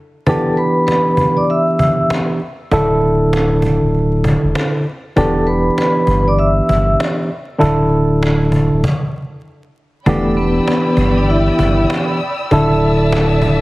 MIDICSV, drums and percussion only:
0, 0, Header, 1, 2, 480
1, 0, Start_track
1, 0, Key_signature, 1, "minor"
1, 0, Tempo, 612245
1, 209, Time_signature, 4, 2, 24, 8
1, 10671, End_track
2, 0, Start_track
2, 0, Title_t, "Cajon"
2, 208, Note_on_c, 9, 36, 116
2, 287, Note_off_c, 9, 36, 0
2, 438, Note_on_c, 9, 38, 42
2, 516, Note_off_c, 9, 38, 0
2, 689, Note_on_c, 9, 38, 102
2, 698, Note_off_c, 9, 38, 0
2, 698, Note_on_c, 9, 38, 54
2, 777, Note_off_c, 9, 38, 0
2, 919, Note_on_c, 9, 36, 87
2, 997, Note_off_c, 9, 36, 0
2, 1173, Note_on_c, 9, 38, 50
2, 1251, Note_off_c, 9, 38, 0
2, 1315, Note_on_c, 9, 38, 29
2, 1394, Note_off_c, 9, 38, 0
2, 1405, Note_on_c, 9, 36, 98
2, 1483, Note_off_c, 9, 36, 0
2, 1649, Note_on_c, 9, 38, 110
2, 1727, Note_off_c, 9, 38, 0
2, 1895, Note_on_c, 9, 38, 44
2, 1974, Note_off_c, 9, 38, 0
2, 2129, Note_on_c, 9, 36, 117
2, 2207, Note_off_c, 9, 36, 0
2, 2358, Note_on_c, 9, 38, 43
2, 2436, Note_off_c, 9, 38, 0
2, 2610, Note_on_c, 9, 38, 104
2, 2620, Note_off_c, 9, 38, 0
2, 2620, Note_on_c, 9, 38, 56
2, 2698, Note_off_c, 9, 38, 0
2, 2839, Note_on_c, 9, 36, 86
2, 2918, Note_off_c, 9, 36, 0
2, 3094, Note_on_c, 9, 38, 49
2, 3172, Note_off_c, 9, 38, 0
2, 3236, Note_on_c, 9, 38, 29
2, 3314, Note_off_c, 9, 38, 0
2, 3326, Note_on_c, 9, 36, 100
2, 3405, Note_off_c, 9, 36, 0
2, 3570, Note_on_c, 9, 38, 114
2, 3648, Note_off_c, 9, 38, 0
2, 3816, Note_on_c, 9, 38, 42
2, 3895, Note_off_c, 9, 38, 0
2, 4050, Note_on_c, 9, 36, 117
2, 4128, Note_off_c, 9, 36, 0
2, 4280, Note_on_c, 9, 38, 42
2, 4358, Note_off_c, 9, 38, 0
2, 4530, Note_on_c, 9, 38, 102
2, 4540, Note_off_c, 9, 38, 0
2, 4540, Note_on_c, 9, 38, 57
2, 4618, Note_off_c, 9, 38, 0
2, 4760, Note_on_c, 9, 36, 89
2, 4838, Note_off_c, 9, 36, 0
2, 5013, Note_on_c, 9, 38, 48
2, 5091, Note_off_c, 9, 38, 0
2, 5155, Note_on_c, 9, 38, 29
2, 5234, Note_off_c, 9, 38, 0
2, 5246, Note_on_c, 9, 36, 101
2, 5324, Note_off_c, 9, 36, 0
2, 5488, Note_on_c, 9, 38, 113
2, 5567, Note_off_c, 9, 38, 0
2, 5735, Note_on_c, 9, 38, 43
2, 5813, Note_off_c, 9, 38, 0
2, 5969, Note_on_c, 9, 36, 117
2, 6048, Note_off_c, 9, 36, 0
2, 6198, Note_on_c, 9, 38, 40
2, 6276, Note_off_c, 9, 38, 0
2, 6449, Note_on_c, 9, 38, 100
2, 6459, Note_off_c, 9, 38, 0
2, 6459, Note_on_c, 9, 38, 57
2, 6537, Note_off_c, 9, 38, 0
2, 6600, Note_on_c, 9, 38, 37
2, 6678, Note_off_c, 9, 38, 0
2, 6679, Note_on_c, 9, 36, 89
2, 6758, Note_off_c, 9, 36, 0
2, 6929, Note_on_c, 9, 36, 105
2, 6929, Note_on_c, 9, 38, 88
2, 7007, Note_off_c, 9, 36, 0
2, 7007, Note_off_c, 9, 38, 0
2, 7889, Note_on_c, 9, 36, 123
2, 7967, Note_off_c, 9, 36, 0
2, 8118, Note_on_c, 9, 38, 43
2, 8196, Note_off_c, 9, 38, 0
2, 8369, Note_on_c, 9, 38, 104
2, 8378, Note_off_c, 9, 38, 0
2, 8378, Note_on_c, 9, 38, 58
2, 8457, Note_off_c, 9, 38, 0
2, 8599, Note_on_c, 9, 36, 90
2, 8677, Note_off_c, 9, 36, 0
2, 8853, Note_on_c, 9, 38, 50
2, 8931, Note_off_c, 9, 38, 0
2, 8995, Note_on_c, 9, 38, 31
2, 9073, Note_off_c, 9, 38, 0
2, 9085, Note_on_c, 9, 36, 102
2, 9164, Note_off_c, 9, 36, 0
2, 9329, Note_on_c, 9, 38, 117
2, 9407, Note_off_c, 9, 38, 0
2, 9575, Note_on_c, 9, 38, 46
2, 9653, Note_off_c, 9, 38, 0
2, 9809, Note_on_c, 9, 36, 122
2, 9887, Note_off_c, 9, 36, 0
2, 10038, Note_on_c, 9, 38, 44
2, 10117, Note_off_c, 9, 38, 0
2, 10290, Note_on_c, 9, 38, 106
2, 10299, Note_off_c, 9, 38, 0
2, 10299, Note_on_c, 9, 38, 57
2, 10378, Note_off_c, 9, 38, 0
2, 10519, Note_on_c, 9, 36, 92
2, 10597, Note_off_c, 9, 36, 0
2, 10671, End_track
0, 0, End_of_file